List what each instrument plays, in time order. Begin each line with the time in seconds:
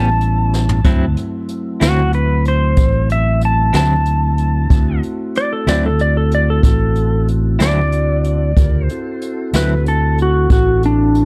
Already playing: fingered electric bass A1, tonewheel organ G3 B3 C#4 E4, electric slide guitar A5
0.21 closed hi-hat
0.54 snare
0.69 floor tom
0.84 fingered electric bass D2, clean electric guitar D3 F#3 C4 E4, tonewheel organ F#3 A3 C4 E4, kick, closed hi-hat
1.17 closed hi-hat
1.48 closed hi-hat
1.80 fingered electric bass D2, clean electric guitar D3 F#3 C4 E4, electric slide guitar F#4, snare, closed hi-hat
2.13 electric slide guitar B4, closed hi-hat
2.45 electric slide guitar C5, closed hi-hat
2.77 fingered electric bass A1, kick, closed hi-hat
3.09 electric slide guitar E5, closed hi-hat
3.41 closed hi-hat
3.45 electric slide guitar A5
3.73 fingered electric bass D2, clean electric guitar D3 F#3 C4 E4, electric slide guitar A5, snare, closed hi-hat
4.05 closed hi-hat
4.38 closed hi-hat
4.69 fingered electric bass D2, tonewheel organ A3 C4 E4 F#4, kick, closed hi-hat
5.03 closed hi-hat
5.35 electric slide guitar D5, closed hi-hat
5.53 electric slide guitar A4
5.67 fingered electric bass D2, clean electric guitar D3 F#3 C4 E4, electric slide guitar D5, snare, closed hi-hat
5.86 electric slide guitar A4
5.99 electric slide guitar D5, closed hi-hat
6.17 electric slide guitar A4
6.31 electric slide guitar D5, closed hi-hat
6.50 electric slide guitar A4
6.63 fingered electric bass A1, electric slide guitar A4, kick, closed hi-hat
6.95 closed hi-hat
7.28 closed hi-hat
7.59 fingered electric bass D2, clean electric guitar D3 F#3 C4 E4, electric slide guitar D5, snare, closed hi-hat
7.92 closed hi-hat
8.24 closed hi-hat
8.56 fingered electric bass D2, tonewheel organ C#3 F4 G4 A#4, kick, closed hi-hat
8.85 electric slide guitar C5
8.89 tonewheel organ C4 E4 F#4 A4, closed hi-hat
9.21 closed hi-hat
9.53 fingered electric bass D2, clean electric guitar D3 F#3 C4 E4, electric slide guitar B4, snare, closed hi-hat
9.86 electric slide guitar A4, closed hi-hat
10.18 closed hi-hat
10.22 electric slide guitar F#4
10.50 fingered electric bass A1, electric slide guitar F#4, kick, closed hi-hat
10.83 electric slide guitar D4, closed hi-hat
11.15 closed hi-hat